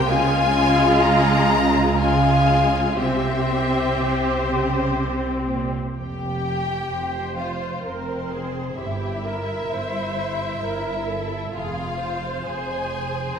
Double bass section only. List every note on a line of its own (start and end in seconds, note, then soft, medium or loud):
0.09 2.95 C#2 medium
2.99 5.73 C2 medium
5.97 6.79 F1 medium
6.91 7.74 F1 medium
7.85 8.67 F1 soft
8.78 9.60 G1 medium
9.71 10.52 G1 medium
10.62 11.44 G1 medium
11.55 12.36 F1 medium
12.47 13.28 F1 medium